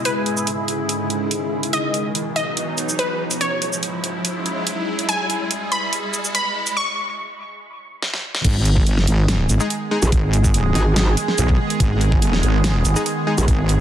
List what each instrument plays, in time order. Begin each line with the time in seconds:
Already playing: ambient pad G#3 E4 G#4, riser
0.05 ambient pad G#2 C#3, synth pluck B4, closed hi-hat
0.26 closed hi-hat
0.37 shaker
0.47 closed hi-hat
0.68 closed hi-hat
0.89 closed hi-hat
1.10 closed hi-hat
1.31 closed hi-hat
1.63 closed hi-hat
1.73 ambient pad B2 F#3 D#4, synth pluck D#5, closed hi-hat
1.94 closed hi-hat
2.15 closed hi-hat
2.36 synth pluck D#5, closed hi-hat
2.57 closed hi-hat
2.78 closed hi-hat, shaker
2.89 shaker
2.99 synth pluck B4, closed hi-hat
3.31 closed hi-hat, shaker
3.41 ambient pad G#2 C#3 G#3 E4, synth pluck C#5, closed hi-hat
3.62 closed hi-hat
3.73 shaker
3.83 closed hi-hat
4.04 closed hi-hat
4.25 closed hi-hat
4.46 closed hi-hat
4.67 closed hi-hat
4.99 closed hi-hat
5.09 ambient pad B2 G#4, synth pluck G#5, closed hi-hat
5.30 closed hi-hat
5.51 closed hi-hat
5.72 synth pluck B5, closed hi-hat
5.93 closed hi-hat
6.14 closed hi-hat, shaker
6.25 shaker
6.35 synth pluck B5, closed hi-hat
6.67 closed hi-hat, shaker
6.77 synth pluck C#6
8.02 snare
8.14 snare
8.35 snare
8.44 wobble bass G#1, ambient pad D#3 G#3 B3 G#4, kick, closed hi-hat, crash
8.65 closed hi-hat
8.77 kick
8.86 wobble bass G1, closed hi-hat
8.98 snare
9.07 wobble bass G#1, closed hi-hat
9.28 snare, closed hi-hat
9.49 wobble bass G#1, closed hi-hat, shaker
9.60 supersaw synth G#3 D#4 G#4, shaker
9.70 closed hi-hat
9.91 supersaw synth G#3 D#4 G#4
10.02 wobble bass A#1, closed hi-hat, shaker
10.12 wobble bass G#1, kick, closed hi-hat
10.33 closed hi-hat
10.44 kick, shaker
10.54 closed hi-hat
10.75 wobble bass G#1, supersaw synth G#3 D#4 G#4, closed hi-hat
10.96 wobble bass G#1, snare, closed hi-hat
11.17 closed hi-hat
11.28 snare
11.38 wobble bass B1, closed hi-hat, shaker
11.49 kick
11.70 closed hi-hat
11.80 wobble bass G#1, kick, closed hi-hat
12.01 closed hi-hat
12.12 kick
12.22 closed hi-hat
12.33 snare
12.43 wobble bass G#1, closed hi-hat
12.64 snare, closed hi-hat
12.85 wobble bass G#1, closed hi-hat, shaker
12.96 supersaw synth G#3 D#4 G#4, shaker
13.06 closed hi-hat
13.27 supersaw synth G#3 D#4 G#4
13.38 wobble bass A#1, closed hi-hat, shaker
13.48 wobble bass G#1, kick, closed hi-hat
13.69 closed hi-hat